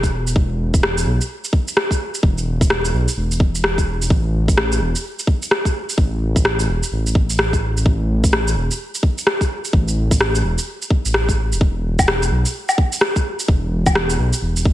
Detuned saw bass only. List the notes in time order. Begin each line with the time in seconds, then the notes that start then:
Already playing: E1
0.36 E1
1.06 B1
2.23 E1
2.94 B1
3.17 E1
4.10 A1
4.81 E1
5.98 A1
6.69 E1
6.92 A1
7.86 A1
8.56 E1
9.73 A1
10.44 E1
11.05 A1
11.52 E1
11.61 E1
12.31 B1
13.48 E1
14.19 B1
14.42 E1